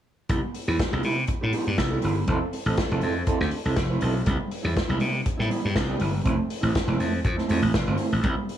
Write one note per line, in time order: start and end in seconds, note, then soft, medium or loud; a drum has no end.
0.29 0.40 C2 loud
0.29 0.46 B3 medium
0.29 0.42 E4 medium
0.29 0.40 G4 medium
0.29 kick loud
0.29 closed hi-hat medium
0.42 muted clean electric guitar stroke soft
0.54 muted clean electric guitar stroke soft
0.54 open hi-hat medium
0.68 0.77 E2 medium
0.68 0.79 B3 medium
0.68 0.79 E4 medium
0.68 0.79 G4 medium
0.79 muted clean electric guitar stroke soft
0.79 kick loud
0.79 snare loud
0.79 closed hi-hat medium
0.92 1.02 C2 medium
0.92 1.03 B3 medium
0.92 1.04 E4 medium
0.92 1.05 G4 medium
1.03 1.23 C3 loud
1.03 1.18 B3 medium
1.03 1.16 E4 medium
1.03 1.15 G4 medium
1.03 open hi-hat medium
1.16 muted clean electric guitar stroke soft
1.27 muted clean electric guitar stroke soft
1.27 kick loud
1.27 closed hi-hat medium
1.41 1.52 A2 medium
1.41 1.52 B3 soft
1.41 1.53 E4 medium
1.41 1.53 G4 medium
1.53 1.70 B3 medium
1.53 1.66 E4 medium
1.53 1.66 G4 loud
1.53 open hi-hat medium
1.67 1.76 G2 medium
1.67 muted clean electric guitar stroke soft
1.78 1.98 C2 medium
1.78 muted clean electric guitar stroke soft
1.78 kick loud
1.78 snare loud
1.78 closed hi-hat medium
1.91 2.01 B3 soft
1.91 2.02 E4 medium
1.91 2.03 A4 medium
2.02 2.23 G1 medium
2.02 2.20 B3 medium
2.02 2.17 E4 medium
2.02 2.16 G4 medium
2.02 open hi-hat medium
2.17 muted clean electric guitar stroke soft
2.28 2.38 F1 loud
2.28 2.45 C4 medium
2.28 2.41 E4 medium
2.28 2.40 A4 medium
2.28 kick loud
2.28 closed hi-hat medium
2.42 muted clean electric guitar stroke soft
2.53 muted clean electric guitar stroke soft
2.53 open hi-hat medium
2.66 2.75 A1 loud
2.66 2.78 C4 medium
2.66 2.79 E4 medium
2.66 2.78 A4 medium
2.77 muted clean electric guitar stroke soft
2.77 kick loud
2.77 snare loud
2.77 closed hi-hat medium
2.91 3.00 F1 loud
2.91 3.01 C4 medium
2.91 3.02 E4 medium
2.91 3.03 A4 medium
3.01 3.22 F2 loud
3.01 3.16 C4 medium
3.01 3.16 E4 medium
3.01 3.14 A4 medium
3.01 open hi-hat medium
3.15 muted clean electric guitar stroke soft
3.27 3.44 C4 medium
3.27 3.41 E4 medium
3.27 3.40 A4 medium
3.27 kick loud
3.27 closed hi-hat medium
3.41 3.50 D2 medium
3.41 muted clean electric guitar stroke soft
3.41 snare soft
3.51 muted clean electric guitar stroke soft
3.51 open hi-hat medium
3.65 3.75 C2 medium
3.65 3.77 C4 medium
3.65 3.77 E4 medium
3.65 3.77 A4 medium
3.76 3.96 F1 medium
3.76 muted clean electric guitar stroke soft
3.76 kick loud
3.76 snare medium
3.76 closed hi-hat medium
3.90 4.02 C4 medium
3.90 4.03 E4 medium
3.90 4.04 B4 medium
4.01 4.21 B1 medium
4.01 4.16 C4 medium
4.01 4.16 E4 medium
4.01 open hi-hat medium
4.05 4.15 A4 medium
4.17 muted clean electric guitar stroke soft
4.26 4.37 C2 loud
4.26 4.43 G3 medium
4.26 4.39 B3 medium
4.26 4.39 E4 medium
4.26 kick loud
4.26 closed hi-hat medium
4.40 muted clean electric guitar stroke soft
4.51 muted clean electric guitar stroke soft
4.51 open hi-hat medium
4.63 4.74 E2 medium
4.63 4.75 G3 medium
4.63 4.75 B3 medium
4.63 4.76 E4 medium
4.76 muted clean electric guitar stroke soft
4.76 kick loud
4.76 snare loud
4.76 closed hi-hat medium
4.88 4.99 C2 medium
4.88 4.99 G3 medium
4.88 5.00 B3 medium
4.88 5.01 E4 medium
5.00 5.20 C3 loud
5.00 5.14 G3 medium
5.00 5.13 B3 medium
5.00 5.12 E4 medium
5.00 open hi-hat medium
5.13 muted clean electric guitar stroke soft
5.25 muted clean electric guitar stroke soft
5.25 kick loud
5.25 closed hi-hat medium
5.38 5.48 A2 medium
5.38 5.49 G3 medium
5.38 5.49 B3 medium
5.38 5.50 E4 medium
5.38 snare soft
5.50 5.67 G3 medium
5.50 5.63 B3 medium
5.50 5.62 E4 medium
5.50 open hi-hat medium
5.63 5.74 G2 medium
5.63 muted clean electric guitar stroke soft
5.75 5.95 C2 loud
5.75 muted clean electric guitar stroke soft
5.75 kick loud
5.75 snare medium
5.75 closed hi-hat medium
5.88 5.98 G3 medium
5.88 5.99 B3 medium
5.88 6.00 G4 medium
5.99 6.20 G1 medium
5.99 6.13 G3 medium
5.99 6.13 B3 medium
5.99 6.11 E4 medium
5.99 open hi-hat medium
6.12 muted clean electric guitar stroke soft
6.24 6.36 F1 loud
6.24 6.41 A3 medium
6.24 6.37 C4 medium
6.24 6.36 E4 medium
6.24 kick loud
6.24 closed hi-hat medium
6.37 muted clean electric guitar stroke soft
6.50 muted clean electric guitar stroke soft
6.50 open hi-hat medium
6.61 6.72 A1 medium
6.61 6.72 A3 soft
6.61 6.72 C4 medium
6.61 6.73 E4 medium
6.73 muted clean electric guitar stroke soft
6.73 kick loud
6.73 snare loud
6.73 closed hi-hat medium
6.87 6.97 F1 medium
6.87 6.96 A3 medium
6.87 6.97 C4 medium
6.87 6.98 E4 medium
6.97 7.19 F2 loud
6.97 7.12 A3 medium
6.97 7.12 C4 medium
6.97 7.11 E4 medium
6.97 open hi-hat medium
7.12 muted clean electric guitar stroke soft
7.24 7.35 F2 medium
7.24 muted clean electric guitar stroke soft
7.24 kick loud
7.24 closed hi-hat medium
7.36 7.47 A3 medium
7.36 7.48 C4 medium
7.36 7.48 E4 medium
7.36 snare soft
7.48 7.60 F2 medium
7.48 7.65 A3 medium
7.48 7.62 C4 medium
7.48 7.61 E4 medium
7.48 open hi-hat medium
7.62 7.71 A1 medium
7.62 muted clean electric guitar stroke medium
7.74 7.85 F1 medium
7.74 muted clean electric guitar stroke soft
7.74 kick medium
7.74 snare loud
7.74 closed hi-hat medium
7.87 7.97 G1 medium
7.87 7.97 A3 medium
7.87 7.98 C4 medium
7.87 8.00 F4 medium
7.97 8.12 A3 medium
7.97 8.12 C4 medium
7.97 8.11 E4 medium
7.97 open hi-hat medium
8.12 8.21 A1 medium
8.12 muted clean electric guitar stroke soft
8.23 8.34 C2 loud
8.23 8.41 G3 medium
8.23 8.38 B3 medium
8.23 8.37 E4 medium
8.23 kick loud
8.23 closed hi-hat medium
8.38 muted clean electric guitar stroke soft
8.49 muted clean electric guitar stroke soft
8.49 open hi-hat medium